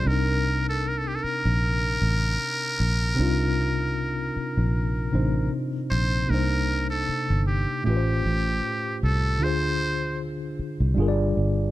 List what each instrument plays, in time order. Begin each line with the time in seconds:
0.03 fingered electric bass C2, tine electric piano C3 C4 D4
0.07 tine electric piano D#4 A#4, muted trumpet A#4
0.69 muted trumpet A4
0.88 muted trumpet A#4
0.98 muted trumpet A4
1.07 muted trumpet G4
1.15 muted trumpet A4
1.23 muted trumpet A#4, muted fingered electric bass stroke
1.45 fingered electric bass A#1
2.02 fingered electric bass A1
2.80 fingered electric bass A#1
3.15 tine electric piano C3 C4 D4
3.19 fingered electric bass C2, tine electric piano D#4 F4
4.36 muted fingered electric bass stroke
4.57 fingered electric bass A#1
5.11 fingered electric bass A1, tine electric piano C3 C4 D4 D#4 C5
5.91 fingered electric bass A#1, muted trumpet C5
6.27 fingered electric bass C2, tine electric piano C3 A#3 D4, muted trumpet A#4
6.32 tine electric piano D#4 C5
6.90 muted trumpet A4
7.09 muted fingered electric bass stroke
7.30 fingered electric bass G1
7.47 muted trumpet G4
7.83 fingered electric bass A1, tine electric piano A2 A3 C#4, muted trumpet G4
7.87 tine electric piano F4 G4 B4
7.97 tine electric piano C5
8.25 fingered electric bass A1
9.03 fingered electric bass C2, muted trumpet A4
9.39 fingered electric bass D2, tine electric piano D3 D4 F4
9.43 tine electric piano G#4 C5, muted trumpet C5
10.59 muted fingered electric bass stroke
10.80 fingered electric bass C2
10.94 fingered electric bass G1, tine electric piano G3 D4 F4
11.00 tine electric piano G#4 A#4
11.08 tine electric piano D5
11.37 fingered electric bass G1